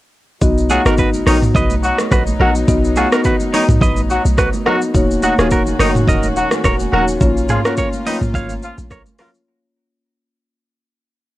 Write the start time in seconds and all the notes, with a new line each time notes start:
0.41 B1 F#3 B3 D#4 F#4 D#5, kick, shaker
0.58 shaker
0.70 F#3 F4 F#4 G#4, high conga, shaker
0.85 G#1 B3 D#4 F#4 A#4 D#5, cross-stick, shaker
0.98 F#4 B4, kick, shaker
1.14 high conga, shaker
1.26 A#1 D#3 B3 D#4 F#4 A#4 C#5 D#5, cross-stick, open hi-hat, high conga, low conga, shaker
1.42 mid tom, shaker
1.54 B1 B4 D#5, kick, low conga, shaker
1.70 high conga, shaker
1.83 F#3 F#4, shaker
1.98 cross-stick, high conga, shaker
2.11 A#1 F#4 B4, kick, cross-stick, shaker
2.27 high conga, shaker
2.39 A#1 F#3 B3 D#4 F#4 A#4 D#5, low conga
2.55 shaker
2.68 B1 B3 D#4 F#4 D#5, kick, shaker
2.84 shaker
2.96 F#3 F4 F#4 G#4, high conga, shaker
3.12 B3 D#4 F#4 A#4 D#5, cross-stick, shaker
3.24 F#4 B4, kick, shaker
3.40 high conga, shaker
3.53 D#3 B3 D#4 F#4 A#4 C#5 D#5, open hi-hat, high conga, low conga, shaker
3.69 B1, mid tom, shaker
3.81 A#1 B4 D#5, kick, low conga, shaker
3.96 high conga, shaker
4.10 F#3 F#4, shaker
4.25 B1, high conga, shaker
4.38 F#4 B4, kick, cross-stick, shaker
4.53 high conga, shaker
4.66 F#3 B3 D#4 F#4 A#4 D#5, cross-stick, low conga
4.82 shaker
4.94 D#1 D#3 A#3 C#4 D#4 F#4 C#5, kick, shaker
5.11 shaker
5.22 F#3 D#4 F#4, high conga, shaker
5.38 D#1 A#3 D#4 F4 F#4 G#4 C#5, cross-stick, shaker
5.51 F#4 A#4, kick, shaker
5.66 high conga, shaker
5.79 F#1 D#3 A#3 D#4 F#4 A#4 C#5, cross-stick, open hi-hat, high conga, low conga, shaker
5.95 mid tom, shaker
6.07 D#1 A#4 D#5, kick, low conga, shaker
6.23 high conga, shaker
6.36 F#3 F#4, shaker
6.51 cross-stick, high conga, shaker
6.64 D#1 A#4 C#5, kick, cross-stick, shaker
6.80 high conga, shaker
6.92 D#1 F#3 A#3 D#4 F#4 A#4 C#5, low conga
7.08 shaker
7.21 A#1 A#3 C#4 F4 C#5, kick, shaker
7.37 shaker
7.49 F3 F4 G#4, mid tom, high conga, shaker
7.64 A#3 C#4 F4 F#4 A#4 C#5, cross-stick, shaker
7.77 A#4 C#5, kick, shaker
7.93 high conga, shaker
8.06 D#3 A#3 C#4 D#4 F4 B4 C#5 D#5, open hi-hat, high conga, low conga, shaker
8.21 A#1, mid tom, shaker
8.34 G#1 C#5 F5, kick, low conga, shaker
8.49 high conga, shaker
8.62 F3 F4, shaker
8.78 A#1, high conga, shaker
8.91 A#4 C#5, kick, cross-stick, shaker
9.06 high conga, shaker
9.19 F3 A#3 C#4 F4 F#4 A#4 C#5, cross-stick, open hi-hat, low conga, shaker
9.34 shaker